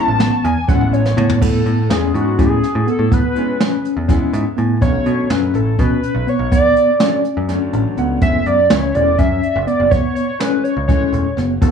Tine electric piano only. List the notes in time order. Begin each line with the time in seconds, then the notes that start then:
0.19 B3
0.68 C#4
1.17 B3
1.41 B3
1.89 C#4
2.38 C#4
2.87 B3
3.11 B3
3.60 C#4
4.08 C#4
4.57 B3
4.81 B3
5.30 C#4
5.78 C#4
6.27 B3
6.51 B3
7.00 C#4
7.49 C#4
7.98 B3
8.22 B3
8.71 C#4
9.19 C#4
9.67 B3
9.91 B3
10.40 C#4
10.88 C#4
11.38 B3
11.62 B3